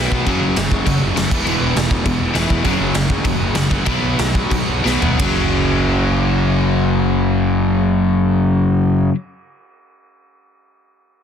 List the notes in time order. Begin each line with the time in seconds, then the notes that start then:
Already playing: B2 F#3 B3
0.10 B1 B2 F#3 B3, kick
0.26 F#1 F#2 C#3 F#3, kick, crash
0.41 F#1
0.56 F#1 F#2 C#3, snare, crash
0.71 F#1, kick
0.86 F#1 F#2 C#3, kick, crash
1.02 F#1
1.15 F#1 F#2 C#3, snare, crash
1.29 E1 E2 B2 E3, kick, crash
1.45 E1 E2 B2 E3, crash
1.61 E1
1.75 E1 E2 B2, snare, crash
1.91 E1, kick
2.05 E1 E2 B2, kick, crash
2.20 E1
2.34 E1 E2 B2 E3, snare, crash
2.50 E1, kick
2.64 F#1 F#2 C#3 F#3, kick, crash
2.80 F#1
2.94 F#1 F#2 C#3, snare, crash
3.10 F#1, kick
3.25 F#1 F#2 C#3, kick, crash
3.41 F#1
3.55 F#1 F#2 C#3, snare, crash
3.70 F#1 F#2 C#3 F#3, kick
3.86 B1 B2 F#3 B3, kick, crash
4.03 B1
4.18 B1 B2 F#3, snare, crash
4.35 B1, kick
4.51 B1 B2 F#3, kick, crash
4.69 B1
4.84 B1 B2 F#3 B3, snare
5.01 E1 B2 F#3 B3, floor tom
5.18 F#1 F#2 C#3 F#3, kick, ride bell